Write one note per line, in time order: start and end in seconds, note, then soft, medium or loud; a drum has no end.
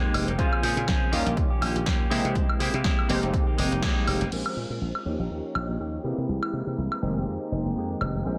0.00 0.34 D#3 loud
0.00 0.28 G#3 loud
0.00 0.34 G#3 medium
0.00 0.28 A#3 loud
0.00 0.34 A#3 medium
0.00 0.34 C4 medium
0.00 0.27 D#4 loud
0.00 0.26 G4 loud
0.00 0.35 G4 loud
0.14 0.23 F1 medium
0.14 open hi-hat loud
0.14 high woodblock medium
0.27 0.35 F1 medium
0.27 0.39 A#3 medium
0.27 0.39 D#4 medium
0.27 0.38 G4 medium
0.27 closed hi-hat medium
0.38 0.48 A#1 loud
0.38 1.08 C#3 medium
0.38 0.62 F3 medium
0.38 1.08 G#3 medium
0.38 1.08 A#3 medium
0.38 0.62 C4 loud
0.38 0.63 C#4 medium
0.38 1.08 F4 medium
0.38 0.64 G#4 medium
0.38 1.08 C5 medium
0.38 kick loud
0.38 closed hi-hat medium
0.53 high woodblock medium
0.63 0.72 A#2 medium
0.63 0.77 F3 medium
0.63 0.77 C4 medium
0.63 0.77 C#4 medium
0.63 0.75 G#4 medium
0.63 open hi-hat loud
0.76 0.84 A#2 medium
0.76 0.87 C4 medium
0.76 0.87 C#4 medium
0.76 0.88 G#4 medium
0.76 closed hi-hat medium
0.87 0.97 A#1 medium
0.87 1.12 F3 medium
0.87 1.12 C4 medium
0.87 1.12 C#4 medium
0.87 1.13 G#4 medium
0.87 kick loud
0.87 snare loud
0.87 closed hi-hat medium
1.12 1.22 D#2 medium
1.12 2.06 D#3 medium
1.12 2.06 G3 medium
1.12 1.26 A#3 medium
1.12 2.06 A#3 medium
1.12 2.07 C#4 medium
1.12 1.27 C#4 medium
1.12 2.07 F4 medium
1.12 1.24 G4 medium
1.12 open hi-hat loud
1.25 1.33 A#1 loud
1.25 1.51 C#4 medium
1.25 1.49 G4 medium
1.25 closed hi-hat medium
1.37 1.46 D#2 medium
1.37 kick loud
1.37 closed hi-hat medium
1.50 1.61 C#4 medium
1.50 1.61 G4 medium
1.61 1.71 A#1 medium
1.61 1.75 A#3 medium
1.61 1.76 C#4 medium
1.61 1.74 G4 medium
1.61 open hi-hat loud
1.61 high woodblock medium
1.75 1.83 A#1 medium
1.75 1.85 C#4 soft
1.75 1.86 G4 medium
1.75 closed hi-hat medium
1.86 2.04 D#2 medium
1.86 2.10 A#3 medium
1.86 2.11 C#4 medium
1.86 2.11 G4 loud
1.86 kick loud
1.86 snare loud
1.86 closed hi-hat medium
2.10 2.20 C3 medium
2.10 3.04 E3 medium
2.10 2.59 G#3 medium
2.10 3.05 G#3 medium
2.10 2.60 A#3 medium
2.10 3.05 A#3 medium
2.10 3.05 C4 medium
2.10 2.60 E4 loud
2.10 3.05 G4 medium
2.10 2.61 G4 loud
2.10 open hi-hat loud
2.25 2.32 C3 medium
2.25 closed hi-hat medium
2.35 2.45 C2 loud
2.35 kick loud
2.35 closed hi-hat medium
2.49 high woodblock medium
2.59 2.69 C3 loud
2.59 2.73 G#3 medium
2.59 2.74 A#3 medium
2.59 2.73 E4 medium
2.59 2.72 G4 medium
2.59 open hi-hat loud
2.73 2.81 C3 loud
2.73 2.83 A#3 medium
2.73 2.84 E4 medium
2.73 2.84 G4 medium
2.73 closed hi-hat medium
2.84 2.94 C2 medium
2.84 3.07 G#3 medium
2.84 3.08 A#3 loud
2.84 3.09 E4 loud
2.84 3.10 G4 loud
2.84 kick loud
2.84 snare loud
2.84 closed hi-hat medium
2.99 high woodblock medium
3.09 3.18 F1 loud
3.09 4.27 D#3 loud
3.09 3.23 G#3 medium
3.09 4.28 G#3 medium
3.09 4.28 A#3 medium
3.09 3.23 A#3 medium
3.09 4.28 C4 medium
3.09 3.22 D#4 medium
3.09 4.28 G4 loud
3.09 3.21 G4 medium
3.09 snare soft
3.09 open hi-hat loud
3.22 3.30 F1 loud
3.22 3.48 A#3 medium
3.22 3.47 D#4 medium
3.22 3.46 G4 medium
3.22 closed hi-hat medium
3.34 kick loud
3.34 closed hi-hat medium
3.47 3.57 A#3 soft
3.47 3.58 D#4 medium
3.47 3.58 G4 medium
3.58 3.68 F1 medium
3.58 3.72 G#3 medium
3.58 3.72 A#3 medium
3.58 3.71 D#4 medium
3.58 3.70 G4 medium
3.58 open hi-hat loud
3.71 3.84 F1 medium
3.71 3.82 A#3 soft
3.71 3.83 D#4 medium
3.71 3.83 G4 medium
3.71 closed hi-hat medium
3.82 3.92 F2 medium
3.82 4.21 G#3 medium
3.82 4.21 A#3 loud
3.82 4.21 D#4 loud
3.82 4.20 G4 loud
3.82 kick loud
3.82 snare loud
3.82 closed hi-hat medium
4.07 4.17 F1 medium
4.07 open hi-hat loud
4.07 high woodblock medium
4.21 4.28 F1 medium
4.21 4.32 A#3 soft
4.21 4.33 D#4 medium
4.21 4.32 G4 medium
4.21 closed hi-hat medium
4.32 4.41 A#1 medium
4.32 4.57 F3 medium
4.32 5.01 G#3 medium
4.32 4.57 C4 medium
4.32 4.57 C#4 medium
4.32 5.02 F4 medium
4.32 4.55 G#4 medium
4.32 5.02 A#4 medium
4.32 5.01 C5 medium
4.32 5.05 C5 medium
4.32 5.05 G#5 medium
4.32 crash medium
4.46 high woodblock medium
4.57 4.66 A#2 medium
4.57 5.07 C4 soft
4.57 5.05 C#4 soft
4.57 5.05 G#4 medium
4.70 4.77 A#2 medium
4.81 4.90 A#1 medium
4.95 high woodblock medium
5.05 5.15 D#2 medium
5.05 5.99 F3 medium
5.05 6.00 A#3 medium
5.05 5.79 A#3 medium
5.05 6.00 C#4 medium
5.05 5.79 C#4 medium
5.05 6.03 D#4 medium
5.05 6.00 D#4 medium
5.05 5.81 G4 medium
5.05 6.00 G4 medium
5.05 6.03 C#5 medium
5.05 6.03 G5 medium
5.19 5.27 A#1 medium
5.30 5.39 D#2 medium
5.55 5.64 A#1 medium
5.55 high woodblock medium
5.69 5.76 A#1 medium
5.79 5.97 D#2 medium
5.79 6.04 A#3 medium
5.79 6.04 C#4 medium
5.79 6.03 G4 medium
6.03 6.13 C3 medium
6.03 6.98 E3 medium
6.03 6.98 G#3 medium
6.03 6.56 G#3 medium
6.03 6.98 A#3 medium
6.03 6.55 A#3 medium
6.03 6.98 C4 medium
6.03 7.01 E4 medium
6.03 6.53 E4 medium
6.03 6.52 G4 medium
6.03 6.99 G4 medium
6.03 8.23 A#4 medium
6.18 6.25 C3 medium
6.29 6.38 C2 loud
6.43 high woodblock medium
6.53 6.62 C3 medium
6.53 7.03 A#3 soft
6.53 7.02 E4 soft
6.53 7.01 G4 medium
6.67 6.74 C3 medium
6.78 6.87 C2 medium
6.92 high woodblock medium
7.02 7.12 F1 medium
7.02 8.21 D#3 medium
7.02 8.24 G#3 medium
7.02 8.21 G#3 medium
7.02 7.75 G#3 medium
7.02 8.21 A#3 medium
7.02 7.76 A#3 medium
7.02 8.21 C4 medium
7.02 8.24 D#4 medium
7.02 7.76 D#4 medium
7.02 7.76 G4 medium
7.02 8.22 G4 loud
7.02 8.24 G5 medium
7.16 7.23 F1 medium
7.27 7.36 F2 medium
7.52 7.61 F1 medium
7.65 7.73 F1 medium
7.76 7.94 F2 medium
7.76 8.25 G#3 medium
7.76 8.25 A#3 medium
7.76 8.26 D#4 medium
7.76 8.26 G4 medium
8.01 8.10 F1 medium
8.01 high woodblock medium
8.14 8.22 F1 medium
8.25 8.35 A#1 medium
8.25 8.38 F3 medium
8.25 8.38 G#3 medium
8.25 8.38 C4 medium
8.25 8.38 C#4 medium
8.25 8.38 F4 medium
8.25 8.38 G#4 medium
8.25 8.38 A#4 medium
8.25 8.38 C5 medium
8.25 8.38 G#5 medium